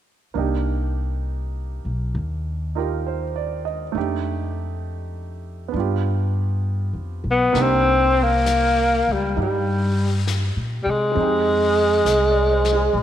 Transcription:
0.34 C2 A#3 D4 D#4
0.39 G4
1.85 B1
2.15 D#2
2.75 D#4 F4 G4 A#4
3.07 C5
3.36 D5
3.65 D#5
3.92 F2 A3 D4 D#4
3.97 G4
5.68 B3 D4
5.73 G2 F4
5.80 G4
6.93 F2
7.24 B1
7.31 B3
7.53 C2 A#3 D4 D#4, brush sweep, snare
7.57 G4
7.62 C4
8.23 A#3
8.46 snare, hi-hat pedal
9.07 C#2
9.13 G3
9.36 G2 D#4 G4, brush sweep
9.42 G3
10.27 snare, hi-hat pedal
10.56 A#2
10.84 C3 G3
10.90 G#3
11.12 F2 G#3 C4
11.17 D#4, brush sweep
11.23 G4
12.05 C2 D#5, snare, hi-hat pedal
12.29 D5
12.51 C5
12.65 snare
12.73 G#4
12.93 A#1, brush sweep

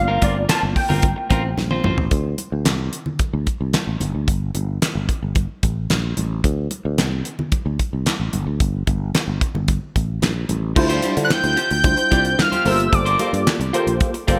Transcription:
Already playing: G1 A3 A#3 C4 F4 F5
0.08 C4 F4 A#4
0.21 G1 C4 F4 A#4 D5, kick, closed hi-hat, muted conga
0.35 muted clean electric guitar stroke
0.49 C4 F4 A#4 A5, snare, clap, closed hi-hat, high conga
0.62 G1, muted clean electric guitar stroke
0.76 G5, muted clean electric guitar stroke, kick, open hi-hat
0.89 G1 C4 F4 A#4, low conga
1.02 kick, closed hi-hat, muted conga
1.16 muted clean electric guitar stroke
1.30 A1 C4 F4 A#4, kick, closed hi-hat, muted conga
1.44 muted clean electric guitar stroke
1.57 A#1, muted clean electric guitar stroke, snare, high conga
1.71 C4 F4 C5, high tom
1.84 A1 C4 F4 C5, mid tom, high conga
1.98 muted clean electric guitar stroke, floor tom
2.11 D2, kick, closed hi-hat
2.38 closed hi-hat, muted conga
2.52 D2
2.65 C2, snare, clap, closed hi-hat, high conga
2.93 closed hi-hat
3.06 low conga
3.19 kick, closed hi-hat, muted conga
3.33 D2
3.47 kick, closed hi-hat, muted conga
3.61 C2
3.73 snare, clap, closed hi-hat, high conga
3.87 A1
4.00 G1, closed hi-hat, high conga
4.15 D2
4.28 G1, kick, closed hi-hat
4.55 G1, closed hi-hat, muted conga
4.82 snare, clap, closed hi-hat, high conga
4.95 G1
5.09 kick, closed hi-hat
5.23 G1
5.35 kick, closed hi-hat, muted conga
5.63 A1, kick, closed hi-hat, muted conga
5.90 A#1, snare, clap, closed hi-hat, high conga
6.17 A1, closed hi-hat, high conga
6.44 D2, kick, closed hi-hat
6.71 closed hi-hat, muted conga
6.85 D2
6.98 C2, snare, clap, closed hi-hat, high conga
7.25 closed hi-hat
7.39 low conga
7.52 kick, closed hi-hat, muted conga
7.66 D2
7.79 kick, closed hi-hat, muted conga
7.93 C2
8.06 snare, clap, closed hi-hat, high conga
8.20 A1
8.33 G1, closed hi-hat, high conga
8.47 D2
8.60 G1, kick, closed hi-hat
8.87 G1, kick, closed hi-hat, muted conga
9.15 snare, clap, closed hi-hat, high conga
9.28 G1
9.41 kick, closed hi-hat
9.55 G1, low conga
9.68 kick, closed hi-hat, muted conga
9.96 A1, kick, closed hi-hat, muted conga
10.22 A#1, snare, clap, closed hi-hat, high conga
10.49 A1, closed hi-hat, high conga
10.76 D2 G3 D4 E4 F4 C5, muted clean electric guitar stroke, kick, crash
10.89 F4 G4 C5, closed hi-hat
11.02 F4 G4 C5, closed hi-hat, muted conga
11.16 D3, muted clean electric guitar stroke, closed hi-hat
11.25 F#6
11.30 G6, snare, clap, high conga
11.43 D2, muted clean electric guitar stroke, closed hi-hat
11.57 F4 G4 C5, closed hi-hat
11.71 D2 G6, muted clean electric guitar stroke, closed hi-hat
11.84 G3 D4 E4 F4 C5, kick, closed hi-hat, muted conga
11.97 muted clean electric guitar stroke, closed hi-hat
12.11 C2 F4 G4 D5, kick, closed hi-hat, muted conga
12.25 muted clean electric guitar stroke, closed hi-hat
12.38 F6, muted clean electric guitar stroke, snare, clap, high conga
12.52 F4 G4 C5, closed hi-hat, high conga
12.65 G1 A#3 F4 G4 A4 A#4 C5 E6, open hi-hat, high conga
12.79 muted clean electric guitar stroke, closed hi-hat
12.92 G1 D6, muted clean electric guitar stroke, kick, closed hi-hat, muted conga
13.06 F4 A#4 C5, closed hi-hat
13.19 A#3 F4 G4 A4 A#4 C5, closed hi-hat, muted conga
13.26 D5
13.33 G2, muted clean electric guitar stroke, closed hi-hat
13.47 snare, clap, high conga
13.60 C2, muted clean electric guitar stroke, closed hi-hat
13.73 A#3 F4 G4 A4 A#4 C5, closed hi-hat
13.87 A#1, muted clean electric guitar stroke, closed hi-hat
14.00 kick, closed hi-hat, muted conga
14.14 muted clean electric guitar stroke, closed hi-hat
14.27 G1 A#3 F4 G4 A4 A#4 C5 D5, kick, closed hi-hat, muted conga

